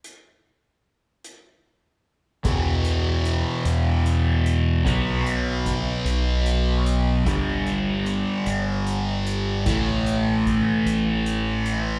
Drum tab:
HH |x--x--|xxxxxx|xxxxxx|xxxxxx|
BD |------|o-----|o-o---|o-----|

HH |xxxxxx|
BD |o-o---|